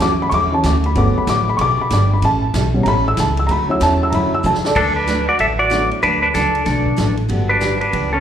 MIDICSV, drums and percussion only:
0, 0, Header, 1, 2, 480
1, 0, Start_track
1, 0, Key_signature, 2, "major"
1, 0, Tempo, 317460
1, 1441, Time_signature, 4, 2, 24, 8
1, 12400, End_track
2, 0, Start_track
2, 0, Title_t, "Drums"
2, 3, Note_on_c, 9, 38, 74
2, 3, Note_on_c, 9, 44, 57
2, 3, Note_on_c, 9, 51, 76
2, 154, Note_off_c, 9, 38, 0
2, 154, Note_off_c, 9, 44, 0
2, 154, Note_off_c, 9, 51, 0
2, 483, Note_on_c, 9, 51, 69
2, 634, Note_off_c, 9, 51, 0
2, 959, Note_on_c, 9, 38, 81
2, 959, Note_on_c, 9, 44, 61
2, 959, Note_on_c, 9, 51, 70
2, 1111, Note_off_c, 9, 38, 0
2, 1111, Note_off_c, 9, 44, 0
2, 1111, Note_off_c, 9, 51, 0
2, 1265, Note_on_c, 9, 51, 48
2, 1416, Note_off_c, 9, 51, 0
2, 1441, Note_on_c, 9, 51, 67
2, 1593, Note_off_c, 9, 51, 0
2, 1922, Note_on_c, 9, 38, 73
2, 1922, Note_on_c, 9, 44, 70
2, 1922, Note_on_c, 9, 51, 76
2, 2073, Note_off_c, 9, 38, 0
2, 2073, Note_off_c, 9, 44, 0
2, 2073, Note_off_c, 9, 51, 0
2, 2398, Note_on_c, 9, 51, 73
2, 2549, Note_off_c, 9, 51, 0
2, 2878, Note_on_c, 9, 38, 70
2, 2878, Note_on_c, 9, 44, 61
2, 2878, Note_on_c, 9, 51, 70
2, 3029, Note_off_c, 9, 38, 0
2, 3029, Note_off_c, 9, 44, 0
2, 3029, Note_off_c, 9, 51, 0
2, 3358, Note_on_c, 9, 51, 73
2, 3509, Note_off_c, 9, 51, 0
2, 3838, Note_on_c, 9, 38, 78
2, 3838, Note_on_c, 9, 44, 71
2, 3838, Note_on_c, 9, 51, 78
2, 3989, Note_off_c, 9, 38, 0
2, 3989, Note_off_c, 9, 44, 0
2, 3989, Note_off_c, 9, 51, 0
2, 4319, Note_on_c, 9, 51, 75
2, 4470, Note_off_c, 9, 51, 0
2, 4791, Note_on_c, 9, 38, 73
2, 4791, Note_on_c, 9, 44, 57
2, 4791, Note_on_c, 9, 51, 76
2, 4942, Note_off_c, 9, 38, 0
2, 4942, Note_off_c, 9, 44, 0
2, 4942, Note_off_c, 9, 51, 0
2, 5097, Note_on_c, 9, 51, 55
2, 5248, Note_off_c, 9, 51, 0
2, 5272, Note_on_c, 9, 51, 67
2, 5424, Note_off_c, 9, 51, 0
2, 5755, Note_on_c, 9, 38, 78
2, 5755, Note_on_c, 9, 44, 61
2, 5755, Note_on_c, 9, 51, 81
2, 5907, Note_off_c, 9, 38, 0
2, 5907, Note_off_c, 9, 44, 0
2, 5907, Note_off_c, 9, 51, 0
2, 6234, Note_on_c, 9, 51, 70
2, 6385, Note_off_c, 9, 51, 0
2, 6710, Note_on_c, 9, 44, 55
2, 6861, Note_off_c, 9, 44, 0
2, 6871, Note_on_c, 9, 38, 61
2, 7022, Note_off_c, 9, 38, 0
2, 7027, Note_on_c, 9, 38, 94
2, 7178, Note_off_c, 9, 38, 0
2, 7192, Note_on_c, 9, 36, 77
2, 7192, Note_on_c, 9, 49, 80
2, 7343, Note_off_c, 9, 49, 0
2, 7344, Note_off_c, 9, 36, 0
2, 7672, Note_on_c, 9, 38, 68
2, 7672, Note_on_c, 9, 44, 61
2, 7672, Note_on_c, 9, 51, 74
2, 7823, Note_off_c, 9, 38, 0
2, 7823, Note_off_c, 9, 44, 0
2, 7823, Note_off_c, 9, 51, 0
2, 8147, Note_on_c, 9, 51, 68
2, 8298, Note_off_c, 9, 51, 0
2, 8634, Note_on_c, 9, 38, 63
2, 8634, Note_on_c, 9, 44, 58
2, 8634, Note_on_c, 9, 51, 65
2, 8785, Note_off_c, 9, 38, 0
2, 8785, Note_off_c, 9, 44, 0
2, 8785, Note_off_c, 9, 51, 0
2, 8941, Note_on_c, 9, 51, 43
2, 9092, Note_off_c, 9, 51, 0
2, 9119, Note_on_c, 9, 51, 60
2, 9270, Note_off_c, 9, 51, 0
2, 9594, Note_on_c, 9, 38, 67
2, 9594, Note_on_c, 9, 44, 71
2, 9594, Note_on_c, 9, 51, 74
2, 9746, Note_off_c, 9, 38, 0
2, 9746, Note_off_c, 9, 44, 0
2, 9746, Note_off_c, 9, 51, 0
2, 9899, Note_on_c, 9, 51, 51
2, 10050, Note_off_c, 9, 51, 0
2, 10066, Note_on_c, 9, 38, 43
2, 10066, Note_on_c, 9, 51, 73
2, 10218, Note_off_c, 9, 38, 0
2, 10218, Note_off_c, 9, 51, 0
2, 10372, Note_on_c, 9, 36, 47
2, 10523, Note_off_c, 9, 36, 0
2, 10550, Note_on_c, 9, 38, 75
2, 10550, Note_on_c, 9, 44, 47
2, 10550, Note_on_c, 9, 51, 67
2, 10701, Note_off_c, 9, 38, 0
2, 10701, Note_off_c, 9, 44, 0
2, 10701, Note_off_c, 9, 51, 0
2, 10845, Note_on_c, 9, 51, 46
2, 10996, Note_off_c, 9, 51, 0
2, 11027, Note_on_c, 9, 51, 60
2, 11179, Note_off_c, 9, 51, 0
2, 11506, Note_on_c, 9, 38, 74
2, 11506, Note_on_c, 9, 44, 54
2, 11506, Note_on_c, 9, 51, 68
2, 11657, Note_off_c, 9, 38, 0
2, 11657, Note_off_c, 9, 44, 0
2, 11657, Note_off_c, 9, 51, 0
2, 11811, Note_on_c, 9, 51, 50
2, 11962, Note_off_c, 9, 51, 0
2, 11993, Note_on_c, 9, 51, 72
2, 12144, Note_off_c, 9, 51, 0
2, 12400, End_track
0, 0, End_of_file